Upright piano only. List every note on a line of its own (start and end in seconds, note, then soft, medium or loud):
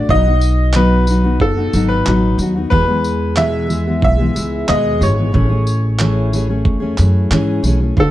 0.00 0.12 D5 medium
0.10 0.77 D#5 loud
0.76 1.37 B4 medium
1.41 1.92 A4 medium
1.89 2.35 B4 medium
2.70 3.39 B4 medium
3.37 4.03 E5 loud
4.04 4.71 E5 loud
4.69 5.03 D#5 loud
5.03 6.95 C#5 medium
8.00 8.11 A4 medium